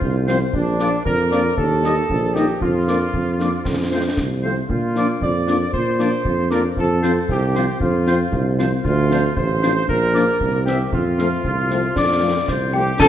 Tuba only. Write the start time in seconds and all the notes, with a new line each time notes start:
0.01 C2
0.53 A#1
1.05 F2
1.57 D#2
2.09 A#1
2.61 F2
3.13 F2
3.65 F2
4.18 C2
4.69 A#2
5.21 F2
5.73 A#2
6.25 F2
6.77 F2
7.29 C2
7.81 F2
8.32 C2
8.84 D2
9.36 A1
9.88 A#1
10.40 C2
10.92 F2
11.44 C2
11.96 F2
12.48 C2
13.00 F2